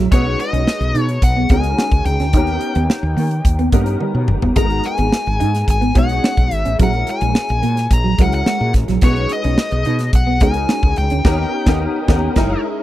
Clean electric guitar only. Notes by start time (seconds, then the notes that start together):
0.12 B3
0.39 muted clean electric guitar stroke
0.53 C#4
0.95 D#4
1.23 muted clean electric guitar stroke
1.36 B3
1.51 B3
1.78 C#4
2.07 muted clean electric guitar stroke
2.20 C#4
2.34 D#4
2.62 muted clean electric guitar stroke
2.76 B3
3.17 A#3
3.45 muted clean electric guitar stroke
3.59 B3
3.73 A#3
4.01 G3
4.15 muted clean electric guitar stroke
4.43 B3
4.57 G#3
4.84 muted clean electric guitar stroke
4.98 B3
5.40 D#4
5.67 muted clean electric guitar stroke
5.81 B3
5.95 B3
6.23 C#4
6.51 muted clean electric guitar stroke
6.65 C#4
6.79 F#3
7.07 muted clean electric guitar stroke
7.21 G#3
7.62 A#3
7.91 muted clean electric guitar stroke
8.04 F#3
8.18 F#3
8.46 G#3
8.60 muted clean electric guitar stroke
8.88 F#3
9.02 B3
9.30 muted clean electric guitar stroke
9.44 C#4
9.86 D#4
10.13 muted clean electric guitar stroke
10.27 B3
10.41 B3
10.69 C#4
10.97 muted clean electric guitar stroke
11.11 C#4